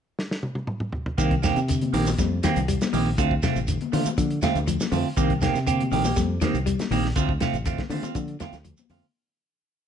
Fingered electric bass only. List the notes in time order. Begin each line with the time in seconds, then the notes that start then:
1.18 C2
1.56 C3
1.93 A#1
2.18 F2
2.57 C2
2.93 A#1
3.18 D2
3.56 A1
3.93 D3
4.06 muted fingered electric bass stroke
4.18 D3
4.55 D2
4.92 F2
5.17 C2
5.55 C3
5.92 A#1
6.17 F2
6.54 C2
6.91 A#1
7.16 D2
7.54 A1
7.90 D3
8.02 muted fingered electric bass stroke
8.15 D3
8.52 D2
8.90 F2